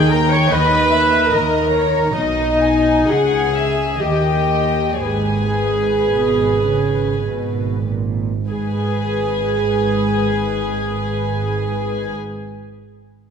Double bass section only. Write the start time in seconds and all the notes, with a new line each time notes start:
Already playing: D#2
0.52 D#2
1.32 D#2
2.15 B1
3.09 C#2
4.01 D#2
5.00 G#1
6.08 G#1
7.23 G#1
8.50 G#1